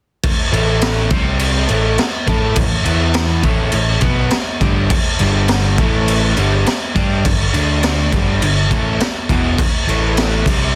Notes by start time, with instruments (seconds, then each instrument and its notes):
0.23 kick, crash
0.52 picked electric bass A1, overdriven electric guitar A2 E3 A3, crash
0.81 snare, crash
1.10 picked electric bass C2, overdriven electric guitar C3 G3 C4, kick, crash
1.39 crash
1.69 picked electric bass A1, overdriven electric guitar A2 E3 A3, crash
1.98 muted overdriven electric guitar stroke, muted picked electric bass stroke, snare, crash
2.27 picked electric bass A2, overdriven electric guitar A3 E4 A4, kick, crash
2.55 picked electric bass A1, overdriven electric guitar A2 E3, kick, crash
2.84 picked electric bass E2, overdriven electric guitar E3 B3 E4, crash
3.14 snare, crash
3.43 picked electric bass A1, overdriven electric guitar A2 E3 A3, kick, crash
3.72 picked electric bass A1, overdriven electric guitar A2 E3, crash
4.01 picked electric bass B1, overdriven electric guitar B2 F#3 B3, kick, crash
4.31 muted overdriven electric guitar stroke, muted picked electric bass stroke, snare, crash
4.61 picked electric bass G1, overdriven electric guitar G2 D3 G3, kick, crash
4.90 kick, crash
5.19 picked electric bass G1, overdriven electric guitar G2 D3 G3, crash
5.48 snare, crash
5.78 picked electric bass A1, overdriven electric guitar A2 E3 A3, kick, crash
6.08 crash
6.37 picked electric bass G1, overdriven electric guitar G2 D3 G3, crash
6.66 muted overdriven electric guitar stroke, muted picked electric bass stroke, snare, crash
6.95 picked electric bass G2, overdriven electric guitar G3 D4 G4, kick, crash
7.25 picked electric bass G1, overdriven electric guitar G2 D3, kick, crash
7.54 picked electric bass D2, overdriven electric guitar D3 A3 D4, crash
7.83 snare, crash
8.12 picked electric bass G1, overdriven electric guitar G2 D3 G3, kick, crash
8.42 picked electric bass G1, overdriven electric guitar G2 D3, crash
8.71 picked electric bass A1, overdriven electric guitar A2 E3 A3, kick, crash
9.00 muted picked electric bass stroke, muted overdriven electric guitar stroke, snare, crash
9.29 picked electric bass E1, overdriven electric guitar E2 B2 E3, kick, crash
9.58 kick, crash
9.87 picked electric bass A1, overdriven electric guitar A2 E3 A3, crash
10.17 snare, crash
10.46 picked electric bass C2, overdriven electric guitar C3 G3 C4, kick, crash